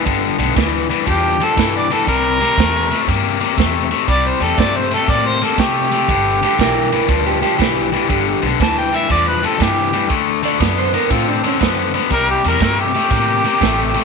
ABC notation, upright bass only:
X:1
M:4/4
L:1/8
Q:"Swing" 1/4=120
K:C
V:1 name="Upright bass" clef=bass
G,,, B,,, D,,2 E,,2 G,,2 | C,,2 E,,2 G,,2 E,,2 | C,, E,, G,,2 A,,2 C,2 | G,,,2 B,,,2 D,,2 B,,,2 |
G,,, B,,, D,,2 E,,2 G,,2 | D,,2 ^F,,2 A,,2 F,,2 | C,, E,, G,,2 A,,2 A,,,2 |]